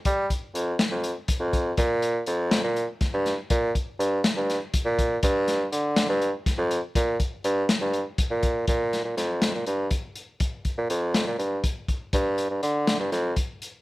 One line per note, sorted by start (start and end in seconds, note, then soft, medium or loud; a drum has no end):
0.05 0.27 G3 medium
0.05 kick medium
0.05 closed hi-hat medium
0.30 kick medium
0.30 closed hi-hat medium
0.54 0.76 F2 medium
0.54 closed hi-hat medium
0.79 snare loud
0.79 closed hi-hat medium
0.91 1.13 F2 medium
1.04 closed hi-hat medium
1.28 kick loud
1.28 closed hi-hat medium
1.39 1.73 F2 medium
1.53 kick medium
1.53 closed hi-hat medium
1.77 2.21 A#2 loud
1.77 kick loud
1.77 closed hi-hat medium
2.02 closed hi-hat medium
2.26 2.59 F2 medium
2.26 closed hi-hat medium
2.51 snare loud
2.51 closed hi-hat medium
2.64 2.85 A#2 medium
2.76 closed hi-hat medium
3.01 kick loud
3.01 snare soft
3.01 closed hi-hat medium
3.13 3.35 G2 medium
3.26 snare soft
3.26 closed hi-hat medium
3.50 3.72 A#2 medium
3.50 kick loud
3.50 closed hi-hat medium
3.75 kick medium
3.75 closed hi-hat medium
3.99 4.21 G2 medium
3.99 closed hi-hat medium
4.24 snare loud
4.24 closed hi-hat medium
4.36 4.58 G2 medium
4.50 snare soft
4.50 closed hi-hat medium
4.74 kick loud
4.74 closed hi-hat medium
4.85 5.18 A#2 medium
4.99 kick medium
4.99 closed hi-hat medium
5.23 5.66 G2 loud
5.23 kick loud
5.23 closed hi-hat medium
5.48 snare soft
5.48 closed hi-hat medium
5.72 6.05 D3 medium
5.72 closed hi-hat medium
5.96 snare loud
5.96 closed hi-hat medium
6.09 6.31 G2 medium
6.22 closed hi-hat medium
6.46 kick loud
6.46 snare soft
6.46 closed hi-hat medium
6.58 6.80 F2 medium
6.71 closed hi-hat medium
6.95 7.17 A#2 medium
6.95 kick loud
6.95 closed hi-hat medium
7.20 kick medium
7.20 closed hi-hat medium
7.44 7.66 G2 medium
7.44 closed hi-hat medium
7.69 snare loud
7.69 closed hi-hat medium
7.81 8.03 G2 medium
7.94 closed hi-hat soft
8.18 kick loud
8.18 closed hi-hat medium
8.30 8.63 A#2 medium
8.43 kick medium
8.43 closed hi-hat medium
8.68 9.01 A#2 medium
8.68 kick loud
8.68 closed hi-hat medium
8.93 snare soft
8.93 closed hi-hat medium
9.04 9.15 A#2 medium
9.17 9.50 F2 medium
9.17 snare soft
9.17 closed hi-hat medium
9.42 snare medium
9.42 closed hi-hat medium
9.54 9.65 A#2 medium
9.66 9.88 G2 medium
9.66 closed hi-hat medium
9.91 kick medium
9.91 closed hi-hat medium
10.15 closed hi-hat medium
10.40 kick loud
10.40 closed hi-hat medium
10.65 kick medium
10.65 closed hi-hat soft
10.78 10.89 A#2 medium
10.90 11.22 F2 medium
10.90 closed hi-hat medium
11.14 snare loud
11.14 closed hi-hat medium
11.27 11.38 A#2 medium
11.38 11.61 G2 medium
11.38 closed hi-hat soft
11.64 kick loud
11.64 closed hi-hat medium
11.88 kick medium
11.88 closed hi-hat medium
12.13 12.46 G2 medium
12.13 kick medium
12.13 closed hi-hat medium
12.38 closed hi-hat soft
12.50 12.61 G2 medium
12.62 12.95 D3 medium
12.62 closed hi-hat medium
12.87 snare loud
12.87 closed hi-hat medium
12.99 13.11 G2 medium
13.12 13.34 F2 medium
13.12 snare soft
13.12 closed hi-hat medium
13.36 kick medium
13.36 closed hi-hat medium
13.62 closed hi-hat medium